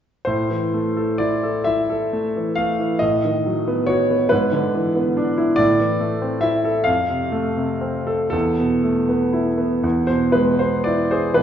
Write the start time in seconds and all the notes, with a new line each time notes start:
0.25 A2 C5
0.50 E3
0.74 A3
0.97 A4
1.18 E4 D5
1.43 A4
1.64 E4 E5
1.90 A4
2.13 A3
2.36 E3
2.55 A3 F5
2.80 E3
2.99 A2 D#5
3.25 D#3
3.46 F#3
3.68 B3
3.87 F#4 C#5
4.11 B3
4.29 G#2 B4
4.53 D3
4.75 E3
4.96 B3
5.17 D4
5.37 E4
5.56 A2 D5
5.80 E3
6.00 A3
6.22 C4
6.41 E4 E5
6.65 A4
6.84 F2 F5
7.09 C3
7.32 A3
7.57 C3
7.81 C4
8.07 A4
8.30 E2 A4
8.59 B2
8.84 A3
9.09 B3
9.33 E4
9.58 B3
9.84 E2
10.07 B2 C5
10.32 G#3 B4
10.59 B3 C5
10.84 E4 D5
11.11 G#4 C5
11.34 B1 B4